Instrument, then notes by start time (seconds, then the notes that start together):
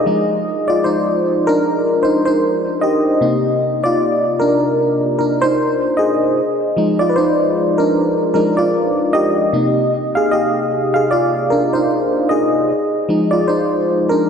fm electric piano
Already playing: G#4 D#5
0.06 F3 G#3 D#4
0.68 F4 D5
0.84 D#4 C5
1.47 D4 A#4
2.03 D#4 C5
2.25 D#4 C5
2.81 G4 D#5
3.21 C3 A#3 D#4
3.84 F4 D5
4.40 D4 A#4
5.19 D4 A#4
5.42 D#4 C5
5.97 G#4 D#5
6.77 F3 G#3 D#4
6.99 F4 D5
7.09 B4
7.16 D#4 C5
7.78 D4 A#4
8.34 F3 G#3 D4 D#4 A#4
8.57 F4 D5
9.13 G4 D#5
9.53 C3 A#3 D#4
10.15 G#4 F5
10.31 G4 D#5
10.94 G#4 F5
11.11 F4 D5
11.50 D4 A#4
11.73 D#4 C5
12.29 G#4 D#5
13.09 F3 G#3 D#4
13.31 F4 D5
13.48 D#4 C5
14.09 D4 A#4